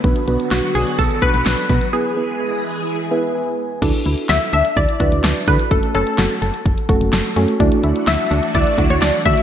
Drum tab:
CC |----------------|----------------|x---------------|----------------|
HH |xxxxxxxxxxxxxxxx|----------------|xxxxxxxxxxxxxxxx|xxxxxxxxxxxxxxxx|
SD |----o-------o---|----------------|----o-------o---|----o-------o---|
BD |o-------o-o---o-|----------------|o-------o-o---o-|o-------o-o-----|

CC |----------------|
HH |xxxxxxxxxxxxxxxx|
SD |----o-------o---|
BD |o-------o-o---o-|